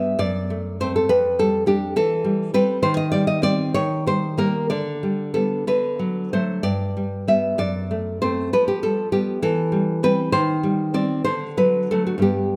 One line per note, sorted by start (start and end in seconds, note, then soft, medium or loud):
0.00 0.16 G2 medium
0.00 0.16 G3 medium
0.00 0.16 B3 medium
0.00 0.18 E5 loud
0.19 1.06 F#2 medium
0.19 0.77 D5 loud
0.50 0.79 A3 medium
0.80 1.07 A3 medium
0.80 1.08 C4 medium
0.80 0.95 C5 loud
0.96 1.10 A4 medium
1.09 1.94 F2 medium
1.09 1.37 B4 loud
1.39 1.65 G3 medium
1.39 1.67 A4 loud
1.66 1.93 G3 medium
1.66 1.94 D4 medium
1.66 1.95 G4 loud
1.96 2.54 E3 medium
1.96 2.52 A4 loud
2.24 2.53 G3 medium
2.54 2.81 G3 medium
2.54 2.80 C4 medium
2.54 2.82 B4 loud
2.82 3.72 D#3 medium
2.82 2.96 C5 loud
2.97 3.11 D#5 loud
3.12 3.41 G3 medium
3.12 3.27 D5 loud
3.27 3.43 D#5 loud
3.42 3.71 G3 medium
3.42 3.71 C4 medium
3.42 3.73 D5 loud
3.74 4.67 D#3 medium
3.74 4.05 C#5 loud
4.07 4.36 G3 medium
4.07 4.37 C5 loud
4.37 4.67 G3 medium
4.37 4.67 A#3 medium
4.37 4.69 A#4 loud
4.70 5.64 D3 medium
4.70 5.31 D5 loud
5.03 5.33 G3 medium
5.34 5.64 G3 medium
5.34 5.64 B3 medium
5.34 5.65 A4 medium
5.67 6.62 D3 medium
5.67 6.30 B4 loud
5.99 6.32 F#3 medium
6.33 6.62 F#3 medium
6.33 6.62 A3 medium
6.33 6.63 C5 medium
6.63 7.55 G2 medium
6.63 7.25 D5 loud
6.97 7.26 G3 medium
7.28 7.56 G3 medium
7.28 7.56 B3 medium
7.28 7.58 E5 loud
7.58 8.50 F#2 medium
7.58 8.19 D5 loud
7.91 8.21 A3 medium
8.22 8.50 A3 medium
8.22 8.50 C4 medium
8.22 8.52 C5 loud
8.53 9.41 F3 medium
8.53 8.67 B4 loud
8.68 8.83 G4 medium
8.83 9.11 G3 medium
8.83 9.12 A4 loud
9.12 9.40 G3 medium
9.12 9.40 B3 medium
9.12 9.41 G4 loud
9.42 10.29 E3 medium
9.42 10.00 A4 loud
9.72 10.02 G3 medium
10.03 10.30 G3 medium
10.03 10.30 C4 medium
10.03 10.32 B4 loud
10.32 11.21 D#3 medium
10.32 10.90 C5 loud
10.63 10.93 G3 medium
10.94 11.21 G3 medium
10.94 11.21 C4 medium
10.94 11.23 D5 loud
11.24 12.21 D3 medium
11.24 11.55 C5 loud
11.57 11.91 F#3 medium
11.57 11.89 B4 loud
11.91 12.17 F#3 medium
11.91 12.21 A3 medium
11.91 12.06 A4 loud
12.07 12.19 F#4 medium
12.18 12.56 G2 medium
12.18 12.56 G3 soft
12.18 12.56 B3 soft
12.22 12.56 G4 medium